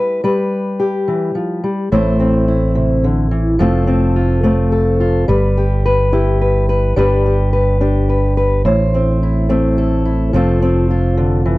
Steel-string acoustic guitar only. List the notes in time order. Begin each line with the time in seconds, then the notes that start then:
Already playing: G3 E4 G4 B4
0.24 G3 B4
0.80 G4
1.08 E3
1.35 F3
1.64 G3
1.92 A2 A3 C4 E4 C5
2.20 C4
2.48 E4
2.75 C3
3.04 D3
3.31 E3
3.59 F3 A3 C4 F4 A4
3.87 C4
4.16 F4
4.43 A3 C4
4.72 A4
5.00 F4
5.28 G3 B4
5.57 G4
5.86 B4
6.13 E4 G4
6.41 B4
6.69 B4
6.96 G3 D4 G4 B4
7.26 G4
7.53 B4
7.81 D4 G4
8.09 B4
8.37 B4
8.65 A2 C5
8.94 C4
9.23 E4
9.49 A3 C4
9.78 A4
10.05 E4
10.33 F3 A3 C4 F4 A4
10.62 C4
10.90 F4
11.17 D3
11.46 E3